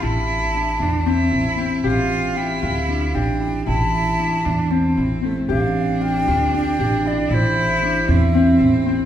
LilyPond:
<<
  \new Staff \with { instrumentName = "Flute" } { \time 7/8 \key a \minor \tempo 4 = 116 a''2. r8 | f''4 g''8 f''4 g''4 | a''2~ a''8 r4 | f''4 g''4 g''4 d''8 |
c''4. e''4. r8 | }
  \new Staff \with { instrumentName = "Harp" } { \time 7/8 \key a \minor e'4 d'8 e'8 c'8 e'8 c'8 | g'4 f'8 f'8 d'8 g'8 e'8 | e'4 d'8 e'8 c'8 e'8 c'8 | g'4 f'8 f'8 d'8 g'8 e'8 |
e'4 d'8 e'8 c'8 e'8 c'8 | }
  \new Staff \with { instrumentName = "Cello" } { \time 7/8 \key a \minor e'4. d'8 e'4. | f'4 e'4. d'4 | e'4. d'8 c'4 a8 | d'2.~ d'8 |
e'4. c'2 | }
  \new Staff \with { instrumentName = "Upright bass" } { \clef bass \time 7/8 \key a \minor a,,4. e,4 a,,4 | a,,4. d,4 a,,4 | a,,4. e,4 a,,4 | a,,4. d,4 a,,4 |
a,,4. e,4 a,,4 | }
>>